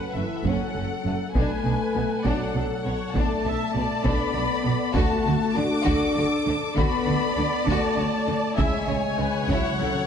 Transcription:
Already playing: french horn section F#3, violin section A4 F#5, viola section B4
0.14 double bass section F#1, cello section F#2, french horn section E3, violin section A3 E5
0.44 double bass section F#1, cello section F#2, french horn section F#3, violin section C#4 F#5, viola section A4, taiko
0.75 double bass section F#1, cello section F#2, violin section C#4
1.05 double bass section F#1, cello section F#2, violin section A3
1.34 double bass section B1, cello section B2, french horn section A3, violin section D4 A4 G#5, viola section B4, taiko
1.64 double bass section B1, cello section B2, violin section D4
1.96 double bass section B1, cello section B2, violin section B3
2.24 double bass section B1, cello section B2, french horn section F#3, violin section D4 F#5, viola section D5, taiko
2.55 double bass section B1, cello section B2, violin section D4, viola section A4
2.85 double bass section B1, cello section B2, violin section B3, viola section C#5
3.14 double bass section B1, cello section B2, french horn section A3, violin section D4 A5, viola section D5, taiko
3.45 double bass section B1, cello section B2, violin section D4, viola section E5
3.75 double bass section B1, cello section B2, violin section B3, viola section D5
4.05 double bass section B1, cello section B2, french horn section B3, violin section D4 B5, taiko
4.34 double bass section B1, cello section B2, violin section D4
4.63 double bass section B1, cello section B2, violin section B3
4.93 double bass section D2, cello section D3, french horn section A3, violin section F#4 A4 A5, viola section F#4, taiko
5.25 double bass section D2, cello section D3, violin section F#4
5.56 double bass section D2, cello section D3, violin section D4 D6, french horn section D4
5.84 double bass section D2, cello section D3, violin section F#4, viola section A4, taiko
6.16 double bass section D2, cello section D3, violin section F#4
6.45 double bass section D2, cello section D3, violin section D4
6.77 double bass section D2, cello section D3, french horn section B3, violin section F#4 B5, viola section D5, taiko
7.07 double bass section D2, cello section D3, violin section F#4
7.37 double bass section D2, cello section D3, violin section D4
7.66 double bass section D2, cello section D3, french horn section A3, violin section F#4 A5, taiko
7.97 double bass section D2, cello section D3, violin section F#4
8.28 double bass section D2, cello section D3, violin section D4
8.57 double bass section C#2, cello section C#3, timpani C#3, french horn section G#3, violin section E4 C#5 G#5, viola section E5, taiko
8.67 timpani C#3
8.74 timpani C#3
8.82 timpani C#3
8.88 double bass section C#2, cello section C#3, timpani C#3, violin section E4, viola section C#5
8.97 timpani C#3
9.04 timpani C#3
9.12 timpani C#3
9.18 double bass section C#2, cello section C#3, timpani C#3, violin section C#4, viola section B4
9.26 timpani C#3
9.34 timpani C#3
9.42 timpani C#3
9.48 double bass section C#2, cello section C#3, french horn section F#3, violin section E4 F#5, viola section C#5, taiko
9.56 timpani C#3
9.64 timpani C#3
9.72 timpani C#3
9.79 double bass section C#2, timpani C#3, cello section C#3, violin section E4, viola section A4
9.95 timpani C#3
10.02 timpani C#3

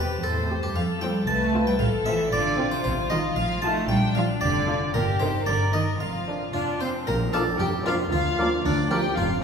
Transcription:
Already playing: double bass section E2, viola section C4 G4, violin section G4 B4, harpsichord B4
0.23 double bass section E2, cello section A2, violin section A4 C5, harpsichord A4
0.49 viola section C4 G4
0.63 cello section G2, violin section G4, harpsichord G4
0.75 double bass section F2, cello section F3, violin section A4 F5, harpsichord F5
1.01 cello section G3, viola section C4 F4, harpsichord G5, violin section G5
1.27 double bass section C2, cello section A3, violin section B4 A5, harpsichord A5
1.54 viola section C4 F4
1.67 cello section G3, harpsichord G5, violin section G5
1.79 double bass section A1, cello section F3, violin section A4 F5, harpsichord F5
2.06 cello section E3, viola section C4 F4, harpsichord E5, violin section E5
2.32 double bass section A1, cello section D3, violin section F4 D5, harpsichord D5
2.59 viola section C4 F4
2.71 cello section C3, harpsichord C5, violin section C5
2.84 double bass section A1, cello section C3, harpsichord C5, violin section C5
3.10 cello section D#3, viola section D#4 F4, harpsichord D#5, violin section D#5
3.36 double bass section A1, cello section F3, harpsichord F5, violin section F5
3.62 cello section A3, viola section D#4 F4, harpsichord A5, violin section A5
3.88 double bass section A#1, cello section G3, violin section D4 G5, harpsichord G5
4.15 cello section F3, viola section D4 F4, harpsichord F5, violin section F5
4.41 double bass section F1, cello section D3, violin section G4 D5, harpsichord D5
4.68 viola section D4 F4, violin section F4
4.94 double bass section G1, cello section A#2, violin section G4 A#4, harpsichord A#4
5.20 cello section C3, viola section D#4 A#4, harpsichord C5, violin section C5
5.46 double bass section G1, cello section D3, violin section A#4 D5, harpsichord D5
5.73 cello section D#3, viola section D#4 A#4, violin section D#5, harpsichord D#5
6.00 double bass section F1, cello section F3, violin section F4 F5, harpsichord F5
6.27 viola section D4 A#4
6.53 double bass section F1, viola section D4, harpsichord F4, clarinet F4, violin section F5
6.81 viola section C4, harpsichord C5, clarinet C5, violin section C6
7.07 double bass section A#1, cello section A#2, clarinet A#4, harpsichord A#4, violin section A#5, tam-tam
7.33 viola section F3, bassoon A#3, violin section A#3 D4 A5, french horn section D4 F4, harpsichord A4, clarinet A4, oboe D5, flute F6
7.60 double bass section F1, cello section F2, harpsichord G4, clarinet G4, violin section G5
7.86 viola section F3, violin section A#3 D4 F5, bassoon A#3, french horn section D4 F4, clarinet F4, harpsichord F4, oboe D5, flute F6
8.12 double bass section D2, cello section D2, clarinet F4, harpsichord F4, violin section F5
8.38 viola section F3, bassoon A#3, violin section A#3 D4, french horn section A#3 F4, oboe D5, flute F6
8.64 double bass section D2, cello section D2, clarinet D4, harpsichord D4, violin section D5
8.91 viola section F3, bassoon A#3, violin section A#3 D4 G5, french horn section A#3 F4, harpsichord G4, clarinet G4, oboe D5, flute F6
9.16 double bass section F1, cello section F2, clarinet F4, harpsichord F4, violin section F5

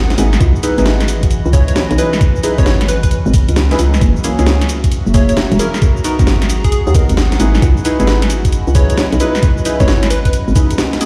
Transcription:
Already playing: fm bass G#1, analog synth pad F#3 F#4, ambient pad B3 G#4 F#5 A#5, downlifter
0.10 snare, closed hi-hat, cabasa
0.18 fm bass G#1, synth stab D#4 E4 G#4 B4, open hi-hat, cabasa
0.33 snare, cabasa
0.40 fm bass C#2, ambient pad C#4, kick, closed hi-hat, cabasa
0.56 cabasa
0.61 synth stab D#4 E4 G#4 B4, ambient pad D#5, open hi-hat, cabasa
0.78 fm bass G#1, ambient pad E3, synth stab D#4 E4 G#4 B4, snare, closed hi-hat, cabasa
0.86 snare, cabasa
1.01 ambient pad B5, snare, closed hi-hat, cabasa
1.08 open hi-hat, cabasa
1.23 kick, closed hi-hat, cabasa
1.31 closed hi-hat, cabasa
1.46 fm bass C#2, cabasa
1.53 synth stab D#4 E4 G#4 B4, digital synth lead C#5, kick, open hi-hat, cabasa
1.68 digital synth lead C#5, closed hi-hat, cabasa
1.76 snare, cabasa
1.91 fm bass B1, closed hi-hat, cabasa
1.98 synth stab D#4 E4 G#4 B4, digital synth lead B4, open hi-hat, cabasa
2.13 snare, cabasa
2.21 kick, closed hi-hat, cabasa
2.36 cabasa
2.43 synth stab D#4 E4 G#4 B4, open hi-hat, cabasa
2.58 fm bass G#1, synth stab D#4 E4 G#4 B4, digital synth lead C#5, kick, snare, closed hi-hat, cabasa
2.66 snare, cabasa
2.81 snare, closed hi-hat, cabasa
2.88 digital synth lead B4, open hi-hat, cabasa
3.03 digital synth lead B4, kick, closed hi-hat, cabasa
3.11 fm bass E2, closed hi-hat, cabasa
3.26 fm bass G#1, cabasa
3.34 kick, open hi-hat, cabasa
3.49 fm bass C#2, closed hi-hat, cabasa
3.56 snare, cabasa
3.71 synth stab D#4 E4 G#4 B4, snare, closed hi-hat, cabasa
3.79 fm bass C#2, open hi-hat, cabasa
3.94 snare, cabasa
4.01 fm bass F#1, analog synth pad F#3 F#4, kick, closed hi-hat, cabasa
4.16 cabasa
4.24 synth stab A#3 C#4 E4 G#4, open hi-hat, cabasa
4.39 fm bass C#2, synth stab A#3 C#4 E4 G#4, snare, closed hi-hat, cabasa
4.46 snare, cabasa
4.54 ambient pad F#4
4.61 snare, closed hi-hat, cabasa
4.69 open hi-hat, cabasa
4.84 ambient pad E5 A#5, kick, closed hi-hat, cabasa
4.92 closed hi-hat, cabasa
5.07 fm bass F#1, cabasa
5.14 synth stab A#3 C#4 E4 G#4, digital synth lead C#5, kick, open hi-hat, cabasa
5.29 digital synth lead C#5, closed hi-hat, cabasa
5.37 snare, cabasa
5.52 fm bass E1, closed hi-hat, cabasa
5.59 synth stab A#3 C#4 E4 G#4, digital synth lead A#4, open hi-hat, cabasa
5.74 snare, cabasa
5.82 ambient pad B3, kick, closed hi-hat, cabasa
5.97 ambient pad G#4, cabasa
6.04 synth stab B3 D#4 F#4 A#4, open hi-hat, cabasa
6.19 fm bass G#1, synth stab B3 D#4 F#4 A#4, kick, snare, closed hi-hat, cabasa
6.27 snare, cabasa
6.42 snare, closed hi-hat, cabasa
6.50 open hi-hat, cabasa
6.58 ambient pad F#5
6.64 digital synth lead G#4, kick, closed hi-hat, cabasa
6.72 fm bass B1, digital synth lead G#4, closed hi-hat, cabasa
6.87 fm bass D#2, digital synth lead G#4, cabasa
6.95 synth stab B3 D#4 F#4 A#4, kick, open hi-hat, cabasa
7.09 fm bass G#1, closed hi-hat, cabasa
7.17 snare, cabasa
7.32 snare, closed hi-hat, cabasa
7.40 fm bass G#1, synth stab D#4 E4 G#4 B4, open hi-hat, cabasa
7.55 snare, cabasa
7.62 fm bass C#2, ambient pad C#4, kick, closed hi-hat, cabasa
7.77 cabasa
7.85 synth stab D#4 E4 G#4 B4, open hi-hat, cabasa
8.00 fm bass G#1, synth stab D#4 E4 G#4 B4, snare, closed hi-hat, cabasa
8.07 ambient pad D#5, snare, cabasa
8.12 ambient pad B5
8.18 ambient pad E4
8.22 snare, closed hi-hat, cabasa
8.30 open hi-hat, cabasa
8.45 kick, closed hi-hat, cabasa
8.53 closed hi-hat, cabasa
8.67 fm bass C#2, cabasa
8.75 synth stab D#4 E4 G#4 B4, digital synth lead C#5, kick, open hi-hat, cabasa
8.90 digital synth lead C#5, closed hi-hat, cabasa
8.98 snare, cabasa
9.12 fm bass B1, closed hi-hat, cabasa
9.20 synth stab D#4 E4 G#4 B4, digital synth lead B4, open hi-hat, cabasa
9.35 snare, cabasa
9.43 kick, closed hi-hat, cabasa
9.58 cabasa
9.65 synth stab D#4 E4 G#4 B4, open hi-hat, cabasa
9.80 fm bass G#1, synth stab D#4 E4 G#4 B4, digital synth lead C#5, kick, snare, closed hi-hat, cabasa
9.88 snare, cabasa
10.03 snare, closed hi-hat, cabasa
10.10 digital synth lead B4, open hi-hat, cabasa
10.25 digital synth lead B4, kick, closed hi-hat, cabasa
10.33 closed hi-hat, cabasa
10.48 fm bass G#1, cabasa
10.55 synth stab D#4 E4 G#4 B4, kick, open hi-hat, cabasa
10.71 closed hi-hat, cabasa
10.78 snare, cabasa
10.93 snare, closed hi-hat, cabasa
11.01 synth stab A#3 C#4 E4 G#4, open hi-hat, cabasa

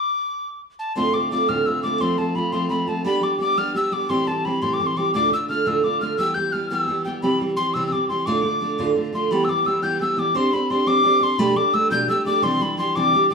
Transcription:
Already playing: tin whistle D6
0.79 tin whistle A5
0.95 steel-string acoustic guitar D2 A2 D3 A3 C4 F4, tin whistle C6
1.13 steel-string acoustic guitar D3 A3 C4 F4, tin whistle D6
1.30 steel-string acoustic guitar D3 A3 C4 F4, tin whistle D6
1.48 steel-string acoustic guitar D2 A2 D3 A3 C4 F4, tin whistle F6
1.65 steel-string acoustic guitar D3 A3 C4 F4, tin whistle E6
1.83 steel-string acoustic guitar D3 A3 C4 F4, tin whistle D6
2.00 steel-string acoustic guitar F3 A3 C4 F4, tin whistle C6
2.18 steel-string acoustic guitar F3 A3 C4 F4, tin whistle A5
2.35 steel-string acoustic guitar F3 A3 C4 F4, tin whistle B5
2.52 steel-string acoustic guitar F3 A3 C4 F4, tin whistle C6
2.69 steel-string acoustic guitar F3 A3 C4 F4, tin whistle B5
2.87 steel-string acoustic guitar F3 A3 C4 F4, tin whistle A5
3.04 steel-string acoustic guitar G3 B3 D4 G4, tin whistle B5
3.21 steel-string acoustic guitar G3 B3 D4 G4, tin whistle D6
3.39 steel-string acoustic guitar G3 B3 D4 G4, tin whistle D6
3.57 steel-string acoustic guitar G3 B3 D4 G4, tin whistle F6
3.74 steel-string acoustic guitar G3 B3 D4 G4, tin whistle E6
3.92 steel-string acoustic guitar G3 B3 D4 G4, tin whistle D6
4.09 steel-string acoustic guitar A2 E3 G3 C4 G4, tin whistle C6
4.27 steel-string acoustic guitar E3 G3 C4 G4, tin whistle A5
4.45 steel-string acoustic guitar E3 G3 C4 G4, tin whistle B5
4.62 steel-string acoustic guitar A2 E3 G3 C4 G4, tin whistle C6
4.74 tin whistle D6
4.79 steel-string acoustic guitar E3 G3 C4 G4
4.87 tin whistle C6
4.96 steel-string acoustic guitar E3 G3 C4 G4, tin whistle D6
5.14 steel-string acoustic guitar D2 A2 D3 A3 D4 F4, tin whistle D6
5.31 steel-string acoustic guitar D3 A3 D4 F4, tin whistle E6
5.48 steel-string acoustic guitar D3 A3 D4 F4, tin whistle F6
5.65 steel-string acoustic guitar D2 A2 D3 A3 D4 F4, tin whistle E6
5.83 steel-string acoustic guitar D3 A3 D4 F4, tin whistle D6
6.01 steel-string acoustic guitar D3 A3 D4 F4, tin whistle F6
6.18 steel-string acoustic guitar E3 G3 B3 G4, tin whistle E6
6.34 steel-string acoustic guitar E3 G3 B3 G4, tin whistle G6
6.52 steel-string acoustic guitar E3 G3 B3 G4, tin whistle F6
6.70 steel-string acoustic guitar E3 G3 B3 G4, tin whistle E6
6.87 steel-string acoustic guitar E3 G3 B3 G4
7.04 steel-string acoustic guitar E3 G3 B3 G4, tin whistle G5
7.22 steel-string acoustic guitar C3 E3 G3 C4 G4, tin whistle B5
7.40 steel-string acoustic guitar E3 G3 C4 G4
7.57 steel-string acoustic guitar E3 G3 C4 G4, tin whistle C6
7.74 steel-string acoustic guitar C3 E3 G3 C4 G4, tin whistle E6
7.87 tin whistle E6
7.92 steel-string acoustic guitar E3 G3 C4 G4, tin whistle D6
8.09 steel-string acoustic guitar E3 G3 C4 G4, tin whistle C6
8.26 steel-string acoustic guitar D2 A2 D3 A3 D4 F4, tin whistle D6
8.43 steel-string acoustic guitar D3 A3 D4 F4
8.60 steel-string acoustic guitar D3 A3 D4 F4
8.78 steel-string acoustic guitar D2 A2 D3 A3 D4 F4
8.95 steel-string acoustic guitar D3 A3 D4 F4
9.13 steel-string acoustic guitar D3 A3 D4 F4, tin whistle C6
9.31 steel-string acoustic guitar E3 G3 B3 G4, tin whistle B5
9.44 steel-string acoustic guitar E3, tin whistle E6
9.49 steel-string acoustic guitar G3 B3, tin whistle D6
9.65 steel-string acoustic guitar E3 G3 B3 G4, tin whistle E6
9.82 steel-string acoustic guitar E3 G3 B3 G4, tin whistle G6
9.99 steel-string acoustic guitar E3 G3 B3 G4, tin whistle E6
10.17 steel-string acoustic guitar E3 G3 B3 G4, tin whistle D6
10.35 steel-string acoustic guitar C4 D4 G4 C5, tin whistle C6
10.53 steel-string acoustic guitar C4 D4 G4 C5, tin whistle B5
10.70 steel-string acoustic guitar C4 D4 G4 C5, tin whistle C6
10.87 steel-string acoustic guitar C4 D4 G4 C5, tin whistle D6
11.03 steel-string acoustic guitar C4 D4 G4 C5
11.21 steel-string acoustic guitar C4 D4 G4 C5, tin whistle C6
11.38 steel-string acoustic guitar B2 G3 A3 D4 G4, tin whistle B5
11.56 steel-string acoustic guitar G3 A3 D4 G4, tin whistle D6
11.73 steel-string acoustic guitar G3 A3 D4 G4, tin whistle E6
11.91 steel-string acoustic guitar B2 G3 A3 D4 G4, tin whistle G6
12.08 steel-string acoustic guitar G3 A3 D4 G4, tin whistle E6
12.25 steel-string acoustic guitar G3 A3 D4 G4, tin whistle D6
12.42 steel-string acoustic guitar C3 E3 G3 D4 G4, tin whistle C6
12.60 steel-string acoustic guitar E3 G3 D4 G4, tin whistle B5
12.77 steel-string acoustic guitar E3 G3 D4 G4, tin whistle C6
12.96 steel-string acoustic guitar C3 E3 G3 D4 G4, tin whistle D6
13.13 steel-string acoustic guitar E3 G3 D4 G4
13.30 steel-string acoustic guitar E3, tin whistle D6

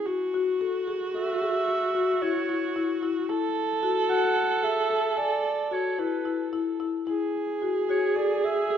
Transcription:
0.06 viola F#4, marimba F#4
0.34 marimba F#4
0.61 marimba A4
0.87 marimba G#4
1.14 marimba A4, clarinet E5
1.42 marimba G#4
1.95 marimba F#4
2.22 marimba E4, clarinet C#5
2.49 marimba E4
2.76 marimba E4
3.03 marimba E4
3.29 marimba E4, viola A4
3.83 marimba F#4
4.10 marimba F#4, clarinet F#5
4.63 marimba G#4, clarinet E5
4.90 marimba A4
5.17 clarinet D5, marimba G#5
5.71 marimba F#4, clarinet C#5
5.99 marimba E4, clarinet B4
6.25 marimba E4
6.53 marimba E4
6.80 marimba E4
7.07 marimba E4, viola G#4
7.62 marimba F#4
7.89 marimba F#4, clarinet C#5
8.16 marimba A4, clarinet D5
8.44 marimba G#4, clarinet E5
8.71 marimba A4

